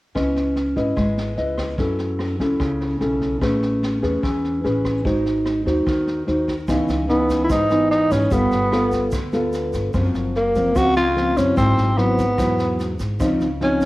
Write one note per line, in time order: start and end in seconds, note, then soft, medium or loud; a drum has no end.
0.15 0.73 C#2 medium
0.15 0.95 C#4 soft
0.15 0.56 E4 soft
0.15 0.56 B4 soft
0.15 0.56 D#5 medium
0.15 kick soft
0.15 cross-stick medium
0.15 snare soft
0.36 snare soft
0.56 snare soft
0.76 0.95 G#1 medium
0.76 1.34 E4 soft
0.76 1.34 B4 soft
0.76 1.34 D#5 soft
0.76 kick soft
0.76 snare soft
0.96 1.35 G#1 medium
0.96 1.76 G#3 soft
0.96 kick soft
0.96 cross-stick soft
0.96 snare soft
1.17 snare soft
1.37 1.75 C#2 medium
1.37 1.75 E4 soft
1.37 1.75 B4 soft
1.37 1.75 D#5 soft
1.37 snare soft
1.58 kick soft
1.58 cross-stick soft
1.58 snare soft
1.78 2.36 F#2 medium
1.78 2.58 F#3 soft
1.78 2.36 C#4 soft
1.78 2.37 E4 soft
1.78 2.37 A4 soft
1.78 kick soft
1.78 snare soft
1.99 snare soft
2.19 cross-stick soft
2.19 snare soft
2.40 2.59 C#2 medium
2.40 2.98 C#4 soft
2.40 2.98 E4 soft
2.40 2.98 A4 soft
2.40 kick soft
2.40 snare soft
2.60 2.98 C#2 medium
2.60 3.40 C#3 soft
2.60 kick soft
2.60 cross-stick soft
2.60 snare soft
2.81 snare soft
3.00 3.39 B1 medium
3.00 3.38 C#4 soft
3.00 3.38 E4 soft
3.00 3.39 A4 soft
3.00 snare soft
3.21 kick soft
3.21 snare soft
3.42 3.99 A1 medium
3.42 4.21 A3 soft
3.42 4.00 C#4 soft
3.42 4.00 G#4 soft
3.42 4.00 B4 soft
3.42 kick soft
3.42 cross-stick soft
3.42 snare soft
3.62 snare soft
3.83 snare soft
4.02 4.22 E2 medium
4.02 4.61 C#4 soft
4.02 4.61 G#4 soft
4.02 4.61 B4 soft
4.02 kick soft
4.02 snare soft
4.23 4.61 E2 medium
4.23 5.03 E3 soft
4.23 kick soft
4.23 cross-stick soft
4.23 snare soft
4.44 snare soft
4.64 5.02 A1 medium
4.64 5.02 C#4 soft
4.64 5.02 G#4 soft
4.64 5.02 B4 soft
4.64 snare soft
4.85 kick soft
4.85 cross-stick soft
4.85 snare soft
5.04 5.62 G#1 medium
5.04 5.84 G#3 soft
5.04 5.63 D#4 soft
5.04 5.63 F#4 soft
5.04 5.63 C5 soft
5.04 kick soft
5.04 snare soft
5.26 snare soft
5.46 cross-stick soft
5.46 snare soft
5.65 5.85 D#2 medium
5.65 6.24 D#4 soft
5.65 6.24 F#4 soft
5.65 6.24 C5 medium
5.65 kick soft
5.65 snare soft
5.86 6.25 D#2 medium
5.86 6.66 D#3 soft
5.86 kick soft
5.86 cross-stick soft
5.86 snare soft
6.07 snare soft
6.27 6.65 D#2 medium
6.27 6.53 D#4 soft
6.27 6.54 F#4 soft
6.27 6.54 C5 soft
6.27 snare soft
6.48 kick soft
6.48 snare soft
6.68 6.87 C#2 medium
6.68 7.48 C#3 soft
6.68 7.06 E3 soft
6.68 7.06 B3 soft
6.68 7.06 D#4 soft
6.68 kick medium
6.68 cross-stick medium
6.68 snare soft
6.68 shaker medium
6.88 7.46 C#2 medium
6.88 snare soft
6.88 shaker soft
7.09 7.67 E3 soft
7.09 7.67 B3 soft
7.09 7.41 B3 medium
7.09 7.67 D#4 medium
7.09 snare soft
7.29 kick soft
7.29 snare soft
7.29 shaker medium
7.44 7.52 E4 medium
7.50 8.07 G#1 medium
7.50 8.29 G#2 soft
7.50 7.90 D#4 medium
7.50 kick soft
7.50 cross-stick medium
7.50 snare soft
7.50 shaker medium
7.70 8.28 E3 medium
7.70 8.28 B3 soft
7.70 8.28 D#4 medium
7.70 snare soft
7.70 shaker soft
7.91 8.13 D#4 medium
7.91 snare soft
8.11 8.30 G#1 medium
8.11 8.34 C#4 medium
8.11 kick soft
8.11 cross-stick medium
8.11 snare soft
8.11 shaker medium
8.31 8.50 G1 medium
8.31 9.10 G3 soft
8.31 8.69 B3 soft
8.31 9.13 B3 medium
8.31 8.69 F4 soft
8.31 8.69 A4 soft
8.31 kick medium
8.31 snare soft
8.31 shaker medium
8.51 9.09 G1 medium
8.51 snare soft
8.51 shaker soft
8.72 9.12 B3 soft
8.72 9.12 F4 soft
8.72 9.13 A4 medium
8.72 cross-stick soft
8.72 snare soft
8.92 kick soft
8.92 snare soft
8.92 shaker medium
9.11 9.70 D2 medium
9.11 9.92 D3 soft
9.11 kick medium
9.11 cross-stick soft
9.11 snare soft
9.11 shaker medium
9.32 9.91 B3 medium
9.32 9.91 F4 soft
9.32 9.91 A4 medium
9.32 snare soft
9.32 shaker soft
9.53 snare soft
9.53 shaker soft
9.73 9.93 G1 medium
9.73 kick soft
9.73 snare soft
9.73 shaker medium
9.94 10.13 F#1 medium
9.94 10.73 F#2 soft
9.94 10.34 F3 soft
9.94 10.35 A#3 soft
9.94 10.35 C4 soft
9.94 kick medium
9.94 cross-stick medium
9.94 snare soft
9.94 shaker medium
10.14 10.71 F#1 medium
10.14 snare soft
10.14 shaker soft
10.35 10.79 A#3 medium
10.35 snare soft
10.55 10.72 F3 soft
10.55 10.72 A#3 medium
10.55 10.73 C4 medium
10.55 kick soft
10.55 snare soft
10.55 shaker soft
10.75 11.33 C#2 medium
10.75 11.55 C#3 soft
10.75 11.02 F3 soft
10.75 11.02 A#3 soft
10.75 11.02 C4 soft
10.75 10.97 F#4 medium
10.75 kick soft
10.75 cross-stick soft
10.75 snare soft
10.75 shaker medium
10.96 11.38 F4 medium
10.96 snare soft
10.96 shaker soft
11.16 11.33 F3 soft
11.16 11.33 A#3 soft
11.16 11.34 C4 medium
11.16 snare soft
11.36 11.56 F#1 medium
11.36 11.94 F#3 soft
11.36 11.94 C4 soft
11.36 11.57 C#4 medium
11.36 11.95 E4 medium
11.36 kick soft
11.36 cross-stick soft
11.36 snare soft
11.36 shaker medium
11.57 11.76 G#1 medium
11.57 12.36 G#2 soft
11.57 12.00 C4 medium
11.57 kick medium
11.57 snare soft
11.57 shaker medium
11.77 12.34 G#1 medium
11.77 snare soft
11.77 shaker soft
11.97 12.24 F#3 medium
11.97 13.00 B3 medium
11.97 12.24 C4 soft
11.97 12.24 E4 medium
11.97 cross-stick soft
11.97 snare soft
12.18 kick soft
12.18 snare soft
12.18 shaker medium
12.38 12.96 E2 medium
12.38 13.18 G#2 soft
12.38 12.93 F#3 soft
12.38 12.93 E4 soft
12.38 kick soft
12.38 cross-stick soft
12.38 snare soft
12.38 shaker medium
12.59 snare soft
12.59 shaker soft
12.79 snare soft
12.79 shaker soft
12.99 13.18 G#1 medium
12.99 kick soft
12.99 snare soft
12.99 shaker soft
13.19 13.39 C#2 medium
13.19 13.85 C#3 soft
13.19 13.46 F3 soft
13.19 13.46 C4 soft
13.19 13.46 D#4 medium
13.19 kick medium
13.19 cross-stick medium
13.19 snare soft
13.19 shaker medium
13.40 13.85 C#2 medium
13.40 snare soft
13.40 shaker soft
13.61 13.85 F3 soft
13.61 13.85 C4 soft
13.61 13.85 C#4 medium
13.61 13.85 D#4 soft
13.61 snare soft
13.81 kick soft
13.81 snare soft
13.81 shaker medium